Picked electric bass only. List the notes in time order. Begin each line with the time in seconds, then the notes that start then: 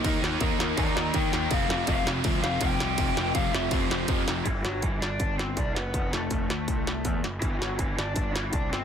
0.04 D#2
0.22 D#2
0.41 D#2
0.59 D#2
0.78 D#2
0.96 D#2
1.14 D#3
1.33 D#2
1.52 F1
1.69 F1
1.88 F1
2.06 F1
2.24 D2
2.44 F1
2.61 F1
2.81 C2
2.98 F1
3.17 F1
3.35 F1
3.54 F1
3.72 F1
3.91 F1
4.09 F2
4.27 F1
4.46 G1
4.65 G1
4.83 G1
5.01 G1
5.20 G1
5.57 C2
5.75 F#1
5.94 F1
6.12 F1
6.31 F1
6.50 D2
6.68 C2
7.05 E2
7.24 F#1
7.42 G1
7.61 G1
7.79 G1
7.98 G1
8.16 G1
8.53 C2
8.72 G1